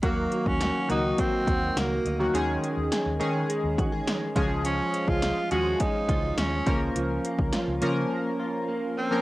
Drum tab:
HH |x-x-x-x-x-x-x-x-|x-x-x-x-x-x-x-x-|x-x-x-x-x-x-x-x-|x-x-x-x---------|
SD |----o-------o---|----o-------o---|----o-------o---|----o-----------|
BD |o--o----o-o-----|----------o---o-|---o----o-o---o-|---o------------|